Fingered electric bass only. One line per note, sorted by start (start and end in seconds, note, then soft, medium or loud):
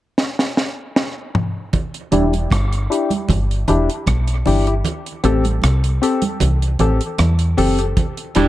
2.13 2.48 E1 medium
2.52 2.87 G1 medium
3.30 3.65 G1 medium
3.69 3.87 E1 medium
4.08 4.43 B1 medium
4.47 4.82 G1 medium
5.25 5.60 A1 medium
5.64 5.99 C2 loud
6.42 6.77 C2 medium
6.81 6.99 A1 medium
7.20 7.54 E2 medium
7.58 7.93 F#1 medium
8.37 8.48 E1 medium